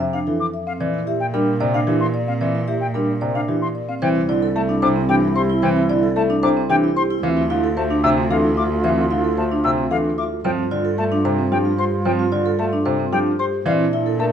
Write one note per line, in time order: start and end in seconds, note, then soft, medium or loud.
0.00 0.66 F2 medium
0.00 0.17 C3 medium
0.00 0.17 E5 medium
0.13 0.31 D4 medium
0.13 0.19 F5 medium
0.27 0.44 E3 soft
0.27 0.44 E4 soft
0.27 0.44 A4 soft
0.40 0.46 D6 medium
0.54 0.71 E5 soft
0.67 0.84 C4 medium
0.67 0.73 F5 medium
0.80 3.87 A#2 medium
0.80 0.98 E3 medium
0.80 0.92 E4 medium
0.80 0.98 D5 medium
0.94 1.11 E4 medium
1.07 1.24 G4 medium
1.07 1.25 E5 medium
1.20 1.26 G5 medium
1.34 1.51 G3 medium
1.34 1.51 D4 medium
1.34 1.51 A#4 medium
1.60 1.78 C3 medium
1.60 1.78 D5 medium
1.74 1.92 D4 medium
1.74 1.80 F5 medium
1.87 2.05 E3 medium
1.87 2.05 E4 medium
1.87 2.05 G4 medium
2.01 2.07 C6 medium
2.14 2.31 D5 medium
2.27 2.45 C4 medium
2.27 2.33 F5 medium
2.41 2.58 E3 medium
2.41 2.54 E4 medium
2.41 2.58 D5 medium
2.55 2.72 E4 medium
2.68 2.85 G4 medium
2.68 2.85 E5 medium
2.81 2.87 G5 medium
2.94 3.12 G3 medium
2.94 3.12 D4 medium
2.94 3.12 A#4 medium
3.21 3.39 C3 medium
3.21 3.39 D5 medium
3.35 3.52 D4 medium
3.35 3.41 F5 medium
3.48 3.66 E3 medium
3.48 3.66 E4 medium
3.48 3.66 G4 soft
3.62 3.68 C6 soft
3.75 3.92 D5 soft
3.89 4.01 C4 medium
3.89 3.95 F5 medium
4.01 7.09 C2 medium
4.01 4.19 E3 medium
4.01 4.19 C4 medium
4.01 7.06 E4 medium
4.01 4.19 C5 medium
4.01 4.08 G5 medium
4.15 4.28 E4 medium
4.29 4.46 D3 medium
4.29 4.46 E4 medium
4.29 4.46 D5 medium
4.42 4.59 A4 medium
4.56 4.73 A3 medium
4.56 4.73 A4 medium
4.56 4.62 A5 medium
4.69 4.86 D4 medium
4.82 5.00 C3 medium
4.82 5.00 C5 medium
4.82 4.88 D6 medium
4.96 5.13 C4 medium
5.09 5.26 E3 medium
5.09 5.26 D4 medium
5.09 5.26 G4 medium
5.09 5.15 G5 medium
5.23 5.40 E4 medium
5.36 5.53 G4 medium
5.36 5.53 C5 medium
5.36 5.42 C6 medium
5.50 5.67 E4 medium
5.62 5.80 E3 medium
5.62 5.80 C4 medium
5.62 5.80 C5 medium
5.62 5.69 G5 medium
5.76 5.88 E4 medium
5.90 6.07 D3 medium
5.90 6.07 E4 medium
5.90 6.07 D5 medium
6.03 6.20 A4 medium
6.16 6.34 A3 medium
6.16 6.33 A4 medium
6.16 6.22 A5 medium
6.30 6.47 D4 loud
6.43 6.60 C3 medium
6.43 6.60 C5 medium
6.43 6.49 D6 medium
6.57 6.74 C4 medium
6.70 6.87 E3 medium
6.70 6.87 D4 medium
6.70 6.87 G4 medium
6.70 6.76 G5 medium
6.84 7.01 E4 medium
6.96 7.14 G4 medium
6.96 7.14 C5 medium
6.96 7.02 C6 medium
7.10 7.27 E4 loud
7.23 10.30 D2 medium
7.23 7.41 E3 medium
7.23 7.41 C4 medium
7.23 10.27 F4 medium
7.23 7.41 E5 medium
7.23 7.29 F5 medium
7.37 7.49 E4 medium
7.50 7.68 D3 medium
7.50 7.67 E4 loud
7.50 7.67 F5 medium
7.64 7.81 A4 medium
7.77 7.94 A3 medium
7.77 7.94 C5 medium
7.77 7.83 A5 medium
7.91 8.08 D4 medium
8.04 8.21 C3 medium
8.04 8.21 E5 medium
8.04 8.10 E6 medium
8.17 8.34 C4 medium
8.30 8.48 E3 medium
8.30 8.48 D4 medium
8.30 8.48 A4 medium
8.30 8.37 F5 medium
8.44 8.61 E4 medium
8.57 8.75 F4 medium
8.57 8.74 E5 medium
8.57 8.63 D6 medium
8.84 9.01 E3 medium
8.84 9.01 C4 medium
8.84 9.01 E5 medium
8.84 8.90 F5 medium
8.98 9.10 E4 medium
9.11 9.28 D3 medium
9.11 9.28 E4 medium
9.11 9.28 F5 medium
9.24 9.41 A4 medium
9.37 9.55 A3 medium
9.37 9.55 C5 medium
9.37 9.44 A5 medium
9.51 9.68 D4 medium
9.64 9.82 C3 medium
9.64 9.82 E5 medium
9.64 9.70 E6 medium
9.78 9.95 C4 medium
9.91 10.08 E3 medium
9.91 10.08 D4 medium
9.91 10.08 A4 medium
9.91 9.97 F5 medium
10.05 10.22 E4 medium
10.18 10.35 F4 medium
10.18 10.35 E5 medium
10.18 10.24 D6 medium
10.44 13.51 G2 medium
10.44 10.62 F3 medium
10.44 10.62 C4 medium
10.44 13.40 F4 medium
10.44 10.62 C5 medium
10.44 10.51 G5 medium
10.58 10.70 F4 medium
10.71 10.89 D3 medium
10.71 10.89 F4 medium
10.71 10.89 D5 medium
10.85 11.02 A4 medium
10.98 11.16 A3 medium
10.98 11.16 A4 medium
10.98 11.04 A5 medium
11.12 11.29 D4 medium
11.25 11.42 C3 medium
11.25 11.42 C5 medium
11.38 11.56 C4 medium
11.52 11.69 F3 medium
11.52 11.69 D4 medium
11.52 11.69 G4 medium
11.52 11.58 G5 medium
11.65 11.83 F4 medium
11.79 11.96 G4 medium
11.79 11.96 C5 medium
11.79 11.85 C6 medium
12.05 12.23 F3 medium
12.05 12.23 C4 medium
12.05 12.23 C5 medium
12.05 12.12 G5 medium
12.19 12.31 F4 medium
12.32 12.50 D3 medium
12.32 12.50 F4 medium
12.32 12.49 D5 medium
12.46 12.63 A4 medium
12.59 12.76 A3 medium
12.59 12.76 A4 medium
12.59 12.65 A5 medium
12.73 12.90 D4 medium
12.86 13.03 C3 medium
12.86 13.03 C5 medium
12.99 13.17 C4 medium
13.12 13.30 F3 medium
13.12 13.30 D4 medium
13.12 13.30 G4 medium
13.12 13.18 G5 medium
13.26 13.43 F4 medium
13.39 13.57 G4 medium
13.39 13.57 C5 medium
13.39 13.45 C6 medium
13.66 14.32 A#2 medium
13.66 13.83 E3 medium
13.66 13.84 C4 medium
13.66 14.32 D4 medium
13.66 13.83 D5 medium
13.66 13.72 F5 medium
13.80 13.92 E4 medium
13.93 14.10 E4 medium
13.93 14.10 E5 medium
14.06 14.24 A4 medium
14.19 14.32 A3 medium
14.19 14.32 A#4 medium
14.19 14.25 A5 medium